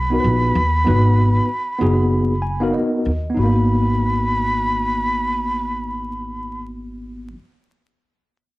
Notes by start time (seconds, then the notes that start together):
Already playing: B1 B5
0.10 B3 D#4 F#4 A#4
0.20 B4
0.24 A#1
0.55 D#2
0.85 G#1 B3 D#4 F#4 B4
1.79 F#1 B3 D#4 F#4 G#4
2.42 G#5
2.60 B3 D#4 F#4 A#4 F5
2.74 D#5
3.06 D#2
3.30 B3
3.34 G#1 D#4 B5
3.39 F#4
3.43 A#3